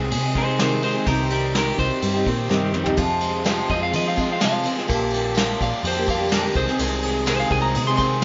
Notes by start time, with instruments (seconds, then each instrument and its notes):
Already playing: picked electric bass C2, overdriven electric guitar C3 G#3, steel-string acoustic guitar D#3 G#3 C4 G#4, clean electric guitar G#4
0.11 picked electric bass C3, overdriven electric guitar G#4, ride
0.23 steel-string acoustic guitar G#3 C4 G#4
0.35 steel-string acoustic guitar D#3 G#3 C4 G#4, clean electric guitar D#4 C5, kick, ride
0.47 steel-string acoustic guitar G#3 C4 G#4
0.58 steel-string acoustic guitar C3 D#3 G#3 C4 G#4, clean electric guitar D#4 C5, snare, ride
0.82 steel-string acoustic guitar D#3 G#3 C4 G#4, clean electric guitar D#4 C5, ride
0.94 steel-string acoustic guitar G#3 C4 G#4
1.06 picked electric bass C2, steel-string acoustic guitar C3 D#3 C4 D#4 G4, clean electric guitar G4 A#4, kick, ride
1.30 overdriven electric guitar G3, clean electric guitar G4 A#4, ride
1.54 steel-string acoustic guitar C3 D#3 C4 D#4 G4, clean electric guitar G4 A#4, snare, ride
1.76 picked electric bass C2, steel-string acoustic guitar D#3 C4 D#4 G4, clean electric guitar C5, kick, ride
2.02 picked electric bass G2, overdriven electric guitar G4, ride
2.14 steel-string acoustic guitar C4 D#4 G4
2.26 picked electric bass A#2, steel-string acoustic guitar D#3 C4 D#4 G4, kick, ride
2.49 picked electric bass G2, steel-string acoustic guitar C3 D#3 C4 D#4 G4, snare
2.71 picked electric bass F2, steel-string acoustic guitar D#3 C4 D#4 G4, overdriven electric guitar G3, mid tom
2.84 steel-string acoustic guitar C4 D#4 G4, floor tom
2.96 steel-string acoustic guitar F2 C3 F3 G#3 C4 F4, picked electric bass F2, tonewheel organ G#4 F5 C6, kick, ride, tambourine
3.21 overdriven electric guitar G#3, ride, tambourine
3.44 steel-string acoustic guitar F2 C3 F3 G#3 C4 F4, snare, ride, tambourine
3.68 picked electric bass F2, steel-string acoustic guitar F3 G#3 C4, clean electric guitar D#5, kick, ride, tambourine
3.73 steel-string acoustic guitar F4
3.83 clean electric guitar F5
3.93 picked electric bass F3, overdriven electric guitar F4, clean electric guitar D#5, ride
4.05 steel-string acoustic guitar F3 G#3 C4 F4, clean electric guitar F5
4.14 steel-string acoustic guitar F3 G#3 C4 F4, kick, ride, tambourine
4.21 clean electric guitar D#5
4.28 steel-string acoustic guitar F3 G#3 C4 F4
4.32 clean electric guitar F5
4.40 steel-string acoustic guitar F2 C3 F3 G#3 C4 F4, snare, ride, tambourine
4.45 clean electric guitar F5
4.63 steel-string acoustic guitar F3 G#3 C4, ride, tambourine
4.67 steel-string acoustic guitar F4
4.76 steel-string acoustic guitar F3 G#3 C4 F4, snare
4.87 picked electric bass A#1, steel-string acoustic guitar A#2 F3 A#3 D4 G4, tonewheel organ A#4 G5 D6, kick, ride, tambourine
5.10 overdriven electric guitar G3, ride, tambourine
5.35 steel-string acoustic guitar A#2 F3 A#3 D4 G4, overdriven electric guitar F4, snare, ride, tambourine
5.59 picked electric bass A#1, steel-string acoustic guitar F3, overdriven electric guitar D4, clean electric guitar F5, kick, ride, tambourine
5.64 steel-string acoustic guitar A#3 D4 G4
5.82 picked electric bass F2, overdriven electric guitar F4, ride
5.87 clean electric guitar C5
5.97 steel-string acoustic guitar A#3 D4 G4
6.06 steel-string acoustic guitar F3 A#3 D4, clean electric guitar F5, kick, ride, tambourine
6.10 steel-string acoustic guitar G4
6.18 steel-string acoustic guitar A#3 D4 G4
6.29 steel-string acoustic guitar A#2 F3 A#3 D4 G4, overdriven electric guitar D3, snare, ride, tambourine
6.34 clean electric guitar A#4
6.42 steel-string acoustic guitar A#3 D4 G4
6.53 picked electric bass C2, overdriven electric guitar C3, steel-string acoustic guitar D#3 G#3 C4, tonewheel organ C5 G#5 D#6, clean electric guitar C5, kick, ride, tambourine
6.57 steel-string acoustic guitar G#4
6.67 steel-string acoustic guitar G#3 C4 G#4, snare
6.78 picked electric bass C2, steel-string acoustic guitar C3 D#3 G#3 C4 G#4, ride, tambourine
7.03 overdriven electric guitar G#3, ride
7.26 steel-string acoustic guitar C3 D#3 G#3 C4 G#4, clean electric guitar C5, snare, ride, tambourine
7.40 clean electric guitar F5
7.49 picked electric bass C2, steel-string acoustic guitar D#3 G#3 C4 G#4, clean electric guitar G#5, kick, ride, tambourine
7.62 clean electric guitar A#5
7.75 picked electric bass C3, overdriven electric guitar G#4, ride
7.87 steel-string acoustic guitar G#3 C4 G#4, clean electric guitar C6
7.97 steel-string acoustic guitar D#3 G#3 C4 G#4, clean electric guitar C6, kick, ride, tambourine